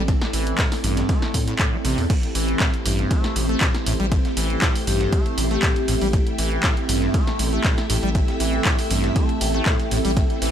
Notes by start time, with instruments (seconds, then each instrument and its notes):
Already playing: sub bass A1, string machine A3 E4 A4 D5, ambient pad C4 A4 E5 G5
0.08 acid bass A2, kick, closed hi-hat, ride
0.22 snare
0.33 sub bass A1, acid bass E3, open hi-hat, ride
0.47 closed hi-hat
0.58 acid bass A2, kick, snare, clap, closed hi-hat, ride
0.72 snare, open hi-hat
0.84 sub bass A1, acid bass G2, open hi-hat, ride
0.97 snare, closed hi-hat
1.09 acid bass A3, kick, closed hi-hat, ride
1.22 snare, ride
1.34 acid bass A2, sub bass A2, kick, open hi-hat, ride
1.48 acid bass A2, snare, closed hi-hat
1.59 acid bass A2, kick, clap, closed hi-hat, ride
1.73 acid bass A3
1.85 sub bass A1, acid bass C3, open hi-hat, ride
1.98 sub bass E2, acid bass A2, open hi-hat
2.10 acid bass A2, string machine A3 E4 G4 C5, ambient pad C4, kick, closed hi-hat, ride, crash
2.23 ambient pad A4, closed hi-hat
2.35 sub bass A1, acid bass E3, ambient pad E5, open hi-hat, ride
2.48 closed hi-hat
2.60 acid bass A2, kick, snare, clap, closed hi-hat, ride
2.74 closed hi-hat
2.85 sub bass A1, acid bass G2, open hi-hat, ride
2.99 snare, closed hi-hat
3.11 acid bass A3, kick, closed hi-hat, ride
3.24 snare, closed hi-hat
3.36 sub bass A1, acid bass A2, ambient pad G5, open hi-hat, ride
3.49 acid bass A3, closed hi-hat
3.61 acid bass A2, kick, snare, clap, closed hi-hat, ride
3.75 snare, closed hi-hat
3.86 sub bass A1, acid bass A2, open hi-hat, ride
4.00 sub bass A1, acid bass G3, closed hi-hat
4.12 acid bass A2, kick, closed hi-hat, ride
4.25 snare, closed hi-hat
4.37 sub bass A1, acid bass E3, open hi-hat, ride
4.50 closed hi-hat
4.62 acid bass A2, kick, snare, clap, closed hi-hat, ride
4.75 open hi-hat
4.87 sub bass A1, acid bass G2, vibraphone G4, open hi-hat, ride
5.01 vibraphone G4, snare, closed hi-hat
5.12 acid bass A3, kick, closed hi-hat, ride
5.26 closed hi-hat, ride
5.38 sub bass A1, acid bass A2, open hi-hat, ride
5.51 acid bass A3, vibraphone G4, snare, closed hi-hat
5.63 acid bass A2, kick, snare, clap, closed hi-hat, ride
5.76 closed hi-hat, ride
5.88 sub bass A1, acid bass A2, open hi-hat, ride
6.01 sub bass A1, acid bass G3, open hi-hat
6.13 acid bass A2, string machine E5, kick, closed hi-hat, ride
6.27 closed hi-hat
6.38 sub bass A1, acid bass E3, open hi-hat, ride
6.52 closed hi-hat
6.63 acid bass A2, kick, snare, clap, closed hi-hat, ride
6.77 closed hi-hat
6.89 sub bass A1, acid bass G2, open hi-hat, ride
7.02 snare, closed hi-hat
7.14 acid bass A3, kick, closed hi-hat, ride
7.27 snare, closed hi-hat
7.39 sub bass A1, acid bass A2, open hi-hat, ride
7.53 acid bass A3, closed hi-hat
7.64 acid bass A2, kick, snare, clap, closed hi-hat, ride
7.78 snare, closed hi-hat
7.90 sub bass A1, acid bass A2, open hi-hat, ride
8.03 sub bass A1, acid bass G3, closed hi-hat
8.15 acid bass A2, kick, closed hi-hat, ride
8.28 snare, closed hi-hat
8.40 sub bass A1, acid bass E3, open hi-hat, ride
8.53 closed hi-hat
8.65 acid bass A2, kick, snare, clap, closed hi-hat, ride
8.79 open hi-hat
8.91 sub bass A1, acid bass G2, open hi-hat, ride
9.04 snare, closed hi-hat
9.16 acid bass A3, kick, closed hi-hat, ride
9.29 closed hi-hat, ride
9.41 sub bass A1, acid bass A2, open hi-hat, ride
9.54 acid bass A3, snare, closed hi-hat
9.66 acid bass A2, kick, snare, clap, closed hi-hat, ride
9.79 closed hi-hat, ride
9.91 sub bass A1, acid bass A2, open hi-hat, ride
10.05 sub bass A1, acid bass G3, open hi-hat
10.17 acid bass A2, string machine A4 C5, kick, closed hi-hat, ride
10.30 closed hi-hat
10.42 sub bass A1, acid bass E3, open hi-hat, ride